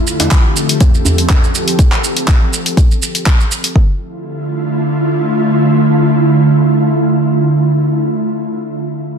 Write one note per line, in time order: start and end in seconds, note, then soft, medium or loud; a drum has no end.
0.00 1.77 F3 medium
0.00 1.77 C4 medium
0.00 1.77 G4 medium
0.00 1.77 A4 medium
0.07 shaker medium
0.20 closed hi-hat soft
0.20 djembe slap medium
0.20 shaker soft
0.31 kick loud
0.31 clap loud
0.31 closed hi-hat soft
0.31 shaker medium
0.57 shaker medium
0.69 closed hi-hat medium
0.69 shaker soft
0.81 kick loud
0.81 closed hi-hat soft
0.81 djembe tone medium
0.81 shaker soft
0.95 shaker soft
1.05 djembe bass medium
1.05 shaker medium
1.18 closed hi-hat medium
1.18 shaker soft
1.29 kick loud
1.29 clap loud
1.29 closed hi-hat soft
1.29 djembe tone loud
1.29 shaker soft
1.44 shaker soft
1.55 shaker medium
1.68 closed hi-hat soft
1.68 shaker soft
1.79 kick loud
1.79 closed hi-hat soft
1.79 shaker medium
1.92 clap medium
1.92 shaker soft
2.04 shaker medium
2.17 closed hi-hat soft
2.17 shaker soft
2.28 kick loud
2.28 clap loud
2.28 closed hi-hat soft
2.28 shaker medium
2.53 shaker medium
2.66 closed hi-hat soft
2.66 shaker soft
2.77 kick loud
2.77 closed hi-hat soft
2.77 shaker soft
2.91 shaker soft
3.03 shaker medium
3.15 closed hi-hat soft
3.15 shaker soft
3.26 kick loud
3.26 clap medium
3.26 closed hi-hat soft
3.26 shaker medium
3.40 shaker soft
3.52 shaker medium
3.64 closed hi-hat soft
3.64 shaker soft
3.75 7.76 D3 medium
3.75 7.76 A3 medium
3.75 7.76 E4 medium
3.75 7.76 F4 medium
3.75 kick medium